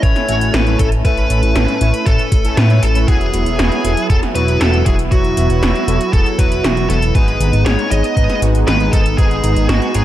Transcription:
Already playing: analog synth pad A3 C#4 E4
0.03 analog synth bass A1, analog polysynth A2 A3 C#4 E4 B4, lead electric guitar C#5, kick, closed hi-hat
0.16 snare, closed hi-hat
0.28 analog synth bass A1, analog polysynth A2 A3 C#4 E4 F#4, closed hi-hat
0.41 closed hi-hat
0.54 analog synth bass A1, lead electric guitar B4, snare, closed hi-hat
0.67 analog polysynth A2 A3 C#4 E4 A4, closed hi-hat
0.79 analog synth bass A1, analog polysynth A2 A3 C#4 E4 A4, lead electric guitar A4, kick, closed hi-hat
0.92 closed hi-hat
1.05 analog synth bass A1, analog polysynth A2 A3 C#4 E4 A4, lead electric guitar B4, kick, closed hi-hat
1.17 closed hi-hat
1.30 analog synth bass A1, analog polysynth A2 A3 C#4 E4 A4, closed hi-hat
1.43 analog synth bass A1, closed hi-hat
1.56 analog synth bass A1, analog polysynth A2 A3 C#4 E4 A4, snare, closed hi-hat
1.68 closed hi-hat
1.81 analog synth bass A1, analog polysynth A2 A3 C#4 E4 C#5, closed hi-hat
1.94 closed hi-hat
2.06 analog synth bass A1, analog polysynth A2 A3 C#4 E4 B4, lead electric guitar A4, kick, closed hi-hat
2.19 closed hi-hat
2.32 analog synth bass A1, kick, closed hi-hat
2.45 analog polysynth A2 A3 C#4 E4 A4, closed hi-hat
2.57 analog synth bass A2, lead electric guitar B4, snare, closed hi-hat
2.70 analog polysynth A2 A3 C#4 E4 C#5, closed hi-hat
2.83 analog synth bass A1, lead electric guitar A4, closed hi-hat
2.95 analog polysynth A3 C#4 E4 B4, closed hi-hat
3.08 analog synth bass E1, analog polysynth F#3 B3 E4 F#4, analog synth pad F#3 B3 E4, lead electric guitar G#4, kick, closed hi-hat
3.21 closed hi-hat
3.33 analog synth bass E1, analog polysynth F#3 B3 E4 F#4, closed hi-hat
3.46 analog synth bass E1, closed hi-hat
3.59 analog synth bass E1, analog polysynth F#3 B3 E4 F#4, snare, closed hi-hat
3.72 closed hi-hat
3.84 analog synth bass E1, analog polysynth F#3 B3 E4 A4, closed hi-hat
3.97 closed hi-hat
4.10 analog synth bass E1, analog polysynth F#3 B3 E4 G#4, lead electric guitar A4, kick, closed hi-hat
4.23 snare, closed hi-hat
4.35 analog synth bass E1, analog polysynth F#3 B3 E4 F#4, lead electric guitar B4, closed hi-hat
4.48 closed hi-hat
4.61 analog synth bass E1, lead electric guitar A4, snare, closed hi-hat
4.73 analog polysynth F#3 B3 E4 F#4, closed hi-hat
4.86 analog synth bass E1, analog polysynth F#3 B3 E4 F#4, lead electric guitar G#4, kick, closed hi-hat
4.99 closed hi-hat
5.11 analog synth bass E1, analog polysynth F#3 B3 E4 F#4, lead electric guitar F#4, kick, closed hi-hat
5.24 closed hi-hat
5.37 analog synth bass E1, analog polysynth F#3 B3 E4 F#4, closed hi-hat
5.50 analog synth bass E1, closed hi-hat
5.62 analog synth bass E1, analog polysynth F#3 B3 E4 F#4, snare, closed hi-hat
5.75 closed hi-hat
5.88 analog synth bass E1, analog polysynth F#3 B3 E4 A4, closed hi-hat
6.01 closed hi-hat
6.13 analog synth bass E1, analog polysynth F#3 B3 E4 G#4, lead electric guitar A4, kick, closed hi-hat
6.26 closed hi-hat
6.39 analog synth bass E1, analog polysynth F#3 B3 E4 F#4, lead electric guitar B4, kick, closed hi-hat
6.52 closed hi-hat
6.64 analog synth bass E1, lead electric guitar F#4, snare, closed hi-hat
6.77 analog polysynth F#3 B3 E4 F#4, closed hi-hat
6.89 analog synth bass E1, analog polysynth F#3 B3 E4 F#4, lead electric guitar A4, closed hi-hat
7.02 closed hi-hat
7.15 analog synth bass G#1, analog polysynth G#2 G#3 B3 D#4 G#4, analog synth pad G#3 B3 D#4, lead electric guitar B4, kick, closed hi-hat
7.28 closed hi-hat
7.40 analog synth bass G#1, analog polysynth G#2 G#3 B3 D#4 G#4, closed hi-hat
7.53 analog synth bass G#1, closed hi-hat
7.66 analog synth bass G#1, analog polysynth G#2 G#3 B3 D#4 G#4, lead electric guitar C#5, snare, closed hi-hat
7.79 closed hi-hat
7.91 analog synth bass G#1, analog polysynth G#2 G#3 B3 D#4 C#5, lead electric guitar D#5, closed hi-hat
8.04 closed hi-hat
8.17 analog synth bass G#1, analog polysynth G#2 G#3 B3 D#4 B4, kick, closed hi-hat
8.30 snare, closed hi-hat
8.42 analog synth bass G#1, analog polysynth G#2 G#3 B3 D#4 F#4, closed hi-hat
8.55 closed hi-hat
8.67 analog synth bass G#1, lead electric guitar B4, snare, closed hi-hat
8.80 analog polysynth G#2 G#3 B3 D#4 G#4, closed hi-hat
8.93 analog synth bass G#1, analog polysynth G#2 G#3 B3 D#4 G#4, lead electric guitar A4, kick, closed hi-hat
9.06 closed hi-hat
9.18 analog synth bass G#1, analog polysynth G#2 G#3 B3 D#4 G#4, lead electric guitar G#4, kick, closed hi-hat
9.31 closed hi-hat
9.44 analog synth bass G#1, analog polysynth G#2 G#3 B3 D#4 G#4, closed hi-hat
9.56 analog synth bass G#1, closed hi-hat
9.69 analog synth bass G#1, analog polysynth G#2 G#3 B3 D#4 G#4, lead electric guitar F#4, snare, closed hi-hat
9.82 closed hi-hat
9.94 analog synth bass G#1, analog polysynth G#2 G#3 B3 D#4 C#5, lead electric guitar G#4, closed hi-hat

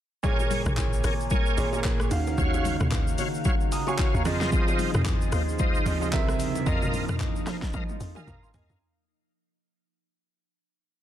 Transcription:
0.23 grand piano A#2 A#3 G#4 C#5, ambient pad C#3 A#3 G#4, tonewheel organ A#4 C#5 G#5, kick, low conga, shaker
0.40 low bongo, shaker
0.50 open hi-hat, low conga, shaker
0.66 log drum bass A#1, tonewheel organ A#4 C#5 G#5, cross-stick, mid tom, shaker
0.77 kick, clap, high bongo, shaker
0.93 shaker
1.04 log drum bass G#1, tonewheel organ A#4 C#5 G#5, cross-stick, open hi-hat, low bongo, shaker
1.20 shaker
1.30 tonewheel organ A#4 C#5 G#5, kick, low conga, shaker
1.46 shaker
1.57 log drum bass G#1, grand piano A#2 A#3 G#4 C#5, open hi-hat, shaker
1.73 tonewheel organ A#4 C#5 G#5, low bongo, shaker
1.84 log drum bass A#1, kick, clap, high bongo, shaker
2.00 cross-stick, shaker
2.11 log drum bass D#2, grand piano D#3 C#4 F#4 F5, ambient pad D#3 A#3 F#4 F5, open hi-hat, shaker
2.27 high bongo, shaker
2.38 log drum bass D#2, tonewheel organ F#4 C#5 F5, kick, low conga, shaker
2.54 low bongo, shaker
2.65 open hi-hat, low conga, shaker
2.80 log drum bass D#2, tonewheel organ F#4 C#5 F5, cross-stick, mid tom, shaker
2.92 kick, clap, high bongo, shaker
3.07 shaker
3.18 log drum bass D#3, tonewheel organ F#4 C#5 F5, open hi-hat, low bongo, shaker
3.34 shaker
3.45 tonewheel organ F#4 C#5 F5, kick, low conga, shaker
3.60 shaker
3.72 grand piano A#5 D#6, open hi-hat, shaker
3.87 tonewheel organ F#4 C#5 F5, grand piano G#5 C#6, low bongo, shaker
3.99 kick, clap, high bongo, shaker
4.14 log drum bass D#2, grand piano F5 A#5, shaker
4.25 log drum bass F2, grand piano F3 C4 G#4 D#5, ambient pad F3 D#4 G#4 C5, tonewheel organ F4 C5 D#5, cross-stick, open hi-hat, shaker
4.41 snare, high bongo, shaker
4.52 tonewheel organ F4 C5 D#5, kick, low conga, shaker
4.68 low bongo, shaker
4.79 open hi-hat, low conga, shaker
4.94 log drum bass F2, tonewheel organ F4 C5 D#5, cross-stick, mid tom, shaker
5.06 kick, clap, high bongo, shaker
5.21 shaker
5.32 log drum bass D#2, tonewheel organ F4 C5 D#5, cross-stick, open hi-hat, low bongo, shaker
5.49 shaker
5.59 tonewheel organ F4 C5 D#5, kick, low conga, shaker
5.75 shaker
5.86 log drum bass D#2, grand piano F3 C4 G#4 D#5, open hi-hat, shaker
6.01 tonewheel organ F4 C5 D#5, low bongo, shaker
6.12 log drum bass C2, grand piano C3 C4 A#4 E5, ambient pad A#3, kick, clap, high bongo, shaker
6.28 cross-stick, shaker
6.40 log drum bass D#2, open hi-hat, shaker
6.55 high bongo, shaker
6.66 log drum bass F2, grand piano F3 C4 A#4 D#5, ambient pad F3 D#4, tonewheel organ A#4 D#5 F5, kick, low conga, shaker
6.82 mid tom, low bongo, shaker
6.93 open hi-hat, low conga, shaker
7.09 log drum bass F2, tonewheel organ A#4 D#5 F5, cross-stick, mid tom, shaker
7.20 kick, clap, high bongo, shaker
7.36 shaker
7.47 log drum bass F3, tonewheel organ A#4 D#5 F5, cross-stick, snare, open hi-hat, low bongo, shaker
7.62 kick, snare, shaker
7.73 log drum bass F3, tonewheel organ A#4 D#5 F5, kick, high tom, low conga, shaker
7.89 high tom, shaker
8.00 log drum bass F2, open hi-hat, shaker
8.15 tonewheel organ A#4 D#5 F5, grand piano D#5 G#5, mid tom, low bongo, shaker
8.27 log drum bass F2, grand piano F5 A#5, kick, mid tom, high bongo, shaker
8.43 grand piano F5 C6, shaker
8.54 log drum bass D#2, tonewheel organ A#4 D#5 F5, grand piano D#5 G#5, floor tom, open hi-hat, high bongo, shaker
8.69 log drum bass F2, grand piano F5 A#5, floor tom, high bongo, shaker

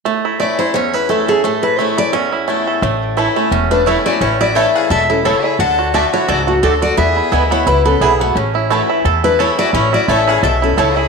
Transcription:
0.05 steel-string acoustic guitar A2, five-string banjo A3
0.25 five-string banjo E4
0.40 steel-string acoustic guitar E3 A3 C#4 E4 D5, five-string banjo A3
0.59 steel-string acoustic guitar C#4 E4 C5, five-string banjo E4
0.74 steel-string acoustic guitar E2 C#5, five-string banjo C#4
0.93 five-string banjo E4, steel-string acoustic guitar B4
1.09 steel-string acoustic guitar E3 A3 C#4 E4 A4, five-string banjo A3
1.28 steel-string acoustic guitar C#4 E4 G#4, five-string banjo A4
1.44 steel-string acoustic guitar A2 A4, five-string banjo A3
1.63 five-string banjo E4, steel-string acoustic guitar B4
1.79 steel-string acoustic guitar E3 A3 C#4 E4 C#5, five-string banjo A3
1.98 five-string banjo E4, steel-string acoustic guitar D5
2.13 steel-string acoustic guitar E2 C#5, five-string banjo C#4
2.32 five-string banjo E4
2.48 steel-string acoustic guitar E3 A3 C#4 E4, five-string banjo A3
2.67 five-string banjo A4
2.82 upright bass A1, steel-string acoustic guitar A2, five-string banjo A3
3.17 steel-string acoustic guitar E3 A3 C#4 E4, mandolin A3 E4 C#5 A5, five-string banjo E4
3.36 five-string banjo A3, steel-string acoustic guitar C#4 E4
3.51 upright bass E1, steel-string acoustic guitar E2, five-string banjo C#4
3.71 five-string banjo A3, fiddle D4, steel-string acoustic guitar B4
3.86 steel-string acoustic guitar E3 A3 C#4 E4 C#5, mandolin A3 E4 C#5 A5, fiddle E4, five-string banjo E4
4.05 five-string banjo A3, steel-string acoustic guitar C#4 E4 D5, fiddle F#4
4.21 upright bass A1, steel-string acoustic guitar A2 C#5, five-string banjo C#4, fiddle E4
4.41 five-string banjo E4, fiddle F#4, steel-string acoustic guitar D5
4.55 steel-string acoustic guitar E3 A3 C#4 E4 E5, mandolin A3 E4 C#5 A5, five-string banjo A3, fiddle A4
4.74 five-string banjo E4, fiddle G#4, steel-string acoustic guitar F5
4.90 upright bass E1, steel-string acoustic guitar B2 E5, fiddle A4, five-string banjo A4
5.09 fiddle C#4, five-string banjo E4, steel-string acoustic guitar A4
5.24 steel-string acoustic guitar C#3 C#5, mandolin A3 E4 C#5 A5, fiddle E4, five-string banjo A4
5.43 five-string banjo E4, fiddle G#4, steel-string acoustic guitar E5
5.58 upright bass D2, steel-string acoustic guitar D3 F#5, five-string banjo D4, fiddle A4
5.79 five-string banjo F#4
5.94 steel-string acoustic guitar D3 A3 D4 F#4 E5, mandolin A3 F#4 D5 A5, five-string banjo A3, fiddle A4
6.13 fiddle E4, five-string banjo F#4, steel-string acoustic guitar C#5
6.28 upright bass C#2, steel-string acoustic guitar G#2 D5, fiddle F#4, five-string banjo A4
6.47 fiddle A3, five-string banjo F#4, steel-string acoustic guitar F#4
6.63 upright bass D2, steel-string acoustic guitar F#2 A4, mandolin A3 F#4 D5 A5, fiddle D4, five-string banjo A4
6.82 five-string banjo F#4, fiddle F#4, steel-string acoustic guitar D5
6.97 steel-string acoustic guitar E2 E5, upright bass E2, five-string banjo B3, fiddle G#4
7.16 five-string banjo E4
7.32 upright bass D2, steel-string acoustic guitar E3 G#3 B3 E4, mandolin B3 E4 B4 G#5, five-string banjo E4
7.51 five-string banjo B3, fiddle E4, steel-string acoustic guitar C#5
7.66 upright bass C#2, steel-string acoustic guitar F#2 B4, five-string banjo E4, fiddle E4
7.85 five-string banjo B3, fiddle C#4, steel-string acoustic guitar A4
8.01 upright bass B1, steel-string acoustic guitar G#2 G#4, mandolin B3 E4 B4 G#5, fiddle B3, five-string banjo E4
8.20 fiddle A3, five-string banjo B3, steel-string acoustic guitar F#4
8.35 upright bass A1, steel-string acoustic guitar A2, five-string banjo C#4
8.55 five-string banjo E4
8.70 steel-string acoustic guitar E3 A3 C#4 E4, mandolin A3 E4 C#5 A5, five-string banjo A3
8.90 five-string banjo E4
9.05 upright bass E2, steel-string acoustic guitar E2, five-string banjo A4
9.24 fiddle D4, five-string banjo E4, steel-string acoustic guitar B4
9.39 steel-string acoustic guitar E3 A3 C#4 E4 C#5, mandolin A3 E4 C#5 A5, fiddle E4, five-string banjo A4
9.58 five-string banjo E4, fiddle F#4, steel-string acoustic guitar D5
9.73 upright bass A1, steel-string acoustic guitar A2 C#5, five-string banjo C#4, fiddle E4
9.93 five-string banjo E4, fiddle F#4, steel-string acoustic guitar D5
10.08 upright bass A1, steel-string acoustic guitar E3 A3 C#4 E4 E5, mandolin A3 E4 C#5 A5, five-string banjo A3, fiddle A4
10.27 steel-string acoustic guitar C#4 E4 F5, five-string banjo E4, fiddle G#4
10.43 upright bass B1, steel-string acoustic guitar B2 E5, fiddle A4, five-string banjo A4
10.62 fiddle C#4, five-string banjo E4, steel-string acoustic guitar A4
10.77 upright bass C#2, steel-string acoustic guitar C#3 C#5, mandolin A3 E4 C#5 A5, fiddle E4, five-string banjo A4
10.97 five-string banjo E4, fiddle G#4, steel-string acoustic guitar E5

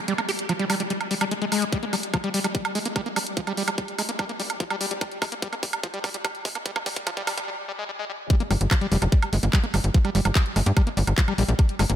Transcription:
0.08 acid bass G3, closed hi-hat
0.18 acid bass A#3, closed hi-hat, high woodblock
0.29 acid bass G4, open hi-hat
0.39 closed hi-hat
0.49 acid bass F3, closed hi-hat, high woodblock
0.59 acid bass G3, closed hi-hat
0.70 acid bass G3, open hi-hat, high woodblock
0.80 acid bass G3, closed hi-hat
0.90 acid bass G3, closed hi-hat
1.01 closed hi-hat, high woodblock
1.11 acid bass G3, open hi-hat
1.21 acid bass G3, closed hi-hat, high woodblock
1.31 acid bass G#3, closed hi-hat
1.42 acid bass G#3, closed hi-hat
1.52 acid bass G#3, open hi-hat, high woodblock
1.62 acid bass G3, closed hi-hat
1.72 acid bass G3, kick, closed hi-hat
1.83 acid bass A#3, closed hi-hat
1.93 acid bass G3, open hi-hat, high woodblock
2.03 closed hi-hat
2.14 acid bass F3, kick, closed hi-hat, high woodblock
2.24 acid bass G3, closed hi-hat
2.34 acid bass G3, open hi-hat
2.44 acid bass G3, closed hi-hat, high woodblock
2.55 acid bass G3, kick, closed hi-hat
2.65 closed hi-hat, high woodblock
2.75 acid bass G#3, open hi-hat
2.85 acid bass A#3, closed hi-hat
2.96 acid bass G3, kick, closed hi-hat, high woodblock
3.06 acid bass A#3, closed hi-hat
3.16 acid bass G3, open hi-hat, high woodblock
3.27 closed hi-hat
3.37 acid bass F3, kick, closed hi-hat
3.47 acid bass G3, closed hi-hat, high woodblock
3.57 acid bass G3, open hi-hat
3.68 acid bass G3, closed hi-hat, high woodblock
3.78 acid bass G3, kick, closed hi-hat
3.88 closed hi-hat
3.99 acid bass G#3, open hi-hat, high woodblock
4.09 acid bass A#3, closed hi-hat
4.19 acid bass G3, kick, closed hi-hat, high woodblock
4.29 acid bass A#3, closed hi-hat
4.40 acid bass G3, open hi-hat
4.50 closed hi-hat, high woodblock
4.60 acid bass F3, kick, closed hi-hat
4.70 acid bass G3, closed hi-hat, high woodblock
4.81 acid bass G3, open hi-hat
4.91 acid bass G3, closed hi-hat
5.01 acid bass G3, kick, closed hi-hat, high woodblock
5.12 closed hi-hat
5.22 acid bass G#3, kick, open hi-hat, high woodblock
5.32 acid bass A#3, closed hi-hat
5.42 acid bass G3, kick, closed hi-hat
5.53 acid bass A#3, closed hi-hat, high woodblock
5.63 acid bass G3, kick, open hi-hat
5.73 closed hi-hat, high woodblock
5.83 acid bass F3, kick, closed hi-hat
5.94 acid bass G3, closed hi-hat
6.04 acid bass G3, kick, open hi-hat, high woodblock
6.14 acid bass G3, closed hi-hat
6.25 acid bass G3, kick, closed hi-hat, high woodblock
6.35 closed hi-hat
6.45 acid bass G#3, kick, open hi-hat
6.55 acid bass A#3, closed hi-hat, high woodblock
6.66 acid bass G3, kick, closed hi-hat
6.76 acid bass A#3, kick, closed hi-hat, high woodblock
6.86 acid bass G3, kick, open hi-hat
6.96 kick, closed hi-hat
7.07 acid bass F3, kick, closed hi-hat, high woodblock
7.17 acid bass G3, kick, closed hi-hat
7.27 acid bass G3, kick, open hi-hat, high woodblock
7.38 acid bass G3, kick, closed hi-hat
7.48 acid bass G3
7.68 acid bass G3
7.79 acid bass G#3
7.89 acid bass G3
7.99 acid bass G#3
8.09 acid bass G3
8.30 acid bass G3, kick, closed hi-hat
8.40 acid bass A#3, closed hi-hat
8.51 analog synth bass G1, acid bass G3, open hi-hat, high woodblock
8.61 analog synth bass G1, closed hi-hat
8.71 acid bass F3, kick, clap, closed hi-hat, high woodblock
8.81 acid bass G3, closed hi-hat
8.92 analog synth bass F1, acid bass G3, open hi-hat
9.02 analog synth bass F1, acid bass G3, closed hi-hat, high woodblock
9.12 acid bass G3, kick, closed hi-hat
9.22 closed hi-hat, high woodblock
9.33 analog synth bass G1, acid bass G#3, open hi-hat
9.43 analog synth bass G1, acid bass A#3, closed hi-hat
9.53 acid bass G3, kick, clap, closed hi-hat, high woodblock
9.64 acid bass A#3, closed hi-hat
9.74 analog synth bass G1, acid bass G3, open hi-hat, high woodblock
9.84 analog synth bass G1, closed hi-hat
9.94 acid bass F3, kick, closed hi-hat
10.05 acid bass G3, closed hi-hat, high woodblock
10.15 analog synth bass G1, acid bass G3, open hi-hat
10.25 analog synth bass G1, acid bass G3, closed hi-hat, high woodblock
10.35 acid bass G3, kick, clap, closed hi-hat
10.46 closed hi-hat
10.56 analog synth bass G1, acid bass G#3, open hi-hat, high woodblock
10.66 analog synth bass G2, acid bass A#3, closed hi-hat
10.77 acid bass G3, kick, closed hi-hat, high woodblock
10.87 acid bass A#3, closed hi-hat
10.97 analog synth bass G1, acid bass G3, open hi-hat
11.07 analog synth bass G1, closed hi-hat, high woodblock
11.18 acid bass F3, kick, clap, closed hi-hat
11.28 acid bass G3, closed hi-hat, high woodblock
11.38 analog synth bass A#1, acid bass G3, open hi-hat
11.49 analog synth bass A#1, acid bass G3, closed hi-hat
11.59 acid bass G3, kick, closed hi-hat, high woodblock
11.69 closed hi-hat
11.79 analog synth bass G1, acid bass G#3, open hi-hat, high woodblock
11.90 analog synth bass G1, acid bass A#3, closed hi-hat

